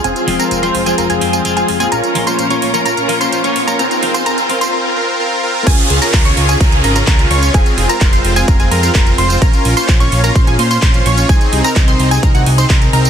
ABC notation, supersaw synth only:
X:1
M:4/4
L:1/16
Q:1/4=128
K:Db
V:1 name="Supersaw synth"
[CFA]3 [CFB]2 [CFc]2 [CFA] [CFB] [CFA]2 [CFA]2 [CFA] z [CFA] | [DFB]3 [DFc]2 [DFd]2 [DFB] [DFB]3 [DFc]2 [DFd]2 [DFB] | [CFB]3 [CFc] [CFB]3 [CFc] [CFB]2 [CFB]2 [CFB]2 [CFB]2 | [DFA]3 [DFB]2 [DFd]2 [DFA] [DFB] [DFA] [DFB] [DFB] [DFB]2 [DFd]2 |
[CFA]3 [CFB]2 [CFc]2 [CFA] [CFB] [CFA] [CFB] [CFB] [CFB]2 [CFc]2 | [DFB]3 [DFc]2 [DFd]2 [DFB] [DFc] [DFA] [DFc] [DFc] [DFc]2 [DFd]2 | [CEA]3 [CEB]2 [CEc]2 [CEA] [CEB] [CEG] z [CEc] [CEB]2 [CEB]2 |]